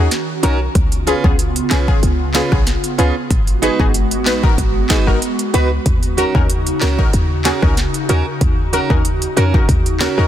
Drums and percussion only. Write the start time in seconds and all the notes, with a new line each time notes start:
0.11 snare, closed hi-hat
0.43 closed hi-hat
0.75 kick, closed hi-hat
0.92 closed hi-hat
1.07 closed hi-hat
1.24 kick
1.39 closed hi-hat
1.56 closed hi-hat
1.71 snare, clap, closed hi-hat
1.88 kick
2.03 closed hi-hat
2.34 snare, clap, closed hi-hat
2.52 kick, cross-stick
2.67 snare, closed hi-hat
2.84 closed hi-hat
2.99 closed hi-hat
3.31 kick, closed hi-hat
3.47 closed hi-hat
3.63 closed hi-hat
3.80 kick
3.94 closed hi-hat
4.11 closed hi-hat
4.26 snare, clap, closed hi-hat
4.43 kick
4.58 kick, closed hi-hat
4.90 kick, snare, clap, closed hi-hat
5.07 cross-stick
5.22 closed hi-hat
5.39 closed hi-hat
5.54 closed hi-hat
5.86 kick, closed hi-hat
6.03 closed hi-hat
6.18 closed hi-hat
6.35 kick
6.50 closed hi-hat
6.67 closed hi-hat
6.81 snare, clap, closed hi-hat
6.99 kick
7.13 closed hi-hat
7.45 snare, clap, closed hi-hat
7.62 kick, cross-stick
7.77 snare, closed hi-hat
7.94 closed hi-hat
8.09 closed hi-hat
8.41 kick, closed hi-hat
8.73 closed hi-hat
8.90 kick
9.05 closed hi-hat
9.22 closed hi-hat
9.37 closed hi-hat
9.54 kick
9.69 kick, closed hi-hat
9.86 closed hi-hat
10.00 snare, clap, closed hi-hat
10.18 cross-stick